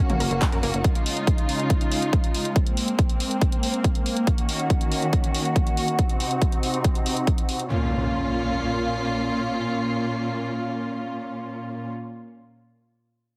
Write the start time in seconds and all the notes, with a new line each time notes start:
Already playing: A#3 C#4 F#4
0.09 F#1 A#3, closed hi-hat, mid tom
0.20 F#1 A#4, open hi-hat
0.31 F#1 A#3, closed hi-hat
0.42 kick, clap, closed hi-hat
0.52 F#2 A#4, closed hi-hat
0.63 F#1 A#3, open hi-hat
0.74 F#1, closed hi-hat
0.84 C#3 G#3 D#4 F4, kick, closed hi-hat
0.95 closed hi-hat
1.06 open hi-hat
1.17 closed hi-hat
1.27 kick, closed hi-hat
1.38 closed hi-hat
1.49 open hi-hat
1.60 closed hi-hat
1.70 kick, closed hi-hat
1.81 closed hi-hat
1.92 open hi-hat
2.02 closed hi-hat
2.13 kick, closed hi-hat
2.24 closed hi-hat
2.35 open hi-hat
2.45 closed hi-hat
2.56 A#3 C4, kick, closed hi-hat
2.67 closed hi-hat
2.77 open hi-hat
2.88 closed hi-hat
2.99 kick, closed hi-hat
3.10 closed hi-hat
3.20 open hi-hat
3.31 closed hi-hat
3.42 kick, closed hi-hat
3.52 closed hi-hat
3.63 open hi-hat
3.74 closed hi-hat
3.84 kick, closed hi-hat
3.95 closed hi-hat
4.06 open hi-hat
4.17 closed hi-hat
4.27 D#3 C#4 F#4, kick, closed hi-hat
4.38 closed hi-hat
4.49 open hi-hat
4.59 closed hi-hat
4.70 kick, closed hi-hat
4.81 closed hi-hat
4.92 open hi-hat
5.02 closed hi-hat
5.13 kick, closed hi-hat
5.24 closed hi-hat
5.35 open hi-hat
5.45 closed hi-hat
5.56 kick, closed hi-hat
5.67 closed hi-hat
5.77 open hi-hat
5.88 closed hi-hat
5.99 C3 C4 D#4, kick, closed hi-hat
6.09 closed hi-hat
6.20 open hi-hat
6.31 closed hi-hat
6.42 kick, closed hi-hat
6.52 closed hi-hat
6.63 open hi-hat
6.74 closed hi-hat
6.84 kick, closed hi-hat
6.95 closed hi-hat
7.06 open hi-hat
7.17 closed hi-hat
7.27 kick, closed hi-hat
7.38 closed hi-hat
7.49 open hi-hat
7.59 closed hi-hat
7.70 A#2 A#3 C#4 F4, impact